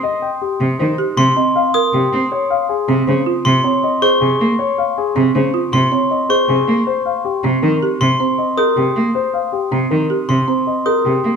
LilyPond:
<<
  \new Staff \with { instrumentName = "Glockenspiel" } { \time 6/4 \key bes \dorian \tempo 4 = 158 r2. c'''8 r4 ees'''8 r4 | r2. c'''8 r4 des'''8 r4 | r2. c'''8 r4 des'''8 r4 | r2. c'''8 r4 ees'''8 r4 |
r2. c'''8 r4 ees'''8 r4 | }
  \new Staff \with { instrumentName = "Grand piano" } { \time 6/4 \key bes \dorian ees''8 g''8 g'8 r8 c''8 r4 ees''8 f''8 r8 g'8 r8 | des''8 f''8 aes'8 r8 c''8 r4 des''8 ees''8 c''8 aes'8 r8 | des''8 f''8 aes'8 r8 c''8 r4 des''8 ees''8 c''8 aes'8 r8 | c''8 f''8 g'8 r8 bes'8 r4 c''8 ees''8 bes'8 g'8 r8 |
c''8 f''8 g'8 r8 bes'8 r4 c''8 ees''8 bes'8 g'8 r8 | }
  \new Staff \with { instrumentName = "Marimba" } { \time 6/4 \key bes \dorian r2 r8 g'8 r8 c'8 r8 bes'8 r4 | r4. c'8 r8 f'8 r8 c'8 r8 aes'8 r4 | r4. c'8 r8 f'8 r8 c'8 r8 aes'8 r4 | r4. c'8 r8 g'8 r8 c'8 r8 aes'8 r4 |
r4. c'8 r8 g'8 r8 c'8 r8 aes'8 r4 | }
  \new Staff \with { instrumentName = "Cello" } { \clef bass \time 6/4 \key bes \dorian r4. c8 ees8 r8 c8 r4. c8 c'8 | r4. c8 des8 r8 c8 r4. c8 bes8 | r4. c8 des8 r8 c8 r4. c8 bes8 | r4. c8 ees8 r8 c8 r4. c8 bes8 |
r4. c8 ees8 r8 c8 r4. c8 bes8 | }
>>